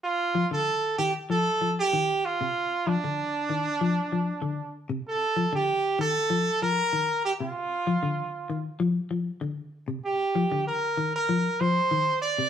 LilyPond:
<<
  \new Staff \with { instrumentName = "Trumpet" } { \time 4/4 \key c \dorian \tempo 4 = 96 f'8. a'8. g'8 a'8. g'8. f'8~ | f'8 d'2. r8 | a'8. g'8. a'4 bes'4 g'16 f'16~ | f'4.~ f'16 r2 r16 |
g'4 bes'8. bes'8. c''4 d''8 | }
  \new Staff \with { instrumentName = "Clean electric guitar" } { \clef bass \time 4/4 \key c \dorian r8 f16 d8 r16 ees8 f8 f8 ees8 r16 c16 | r8 f16 d8 r16 ees8 f8 f8 d8 r16 c16 | r8 f16 d8 r16 ees8 f8 f8 ees8 r16 c16 | r8 f16 d8 r16 ees8 f8 f8 d8 r16 c16 |
r8 f16 d8 r16 ees8 f8 f8 ees8 r16 c16 | }
>>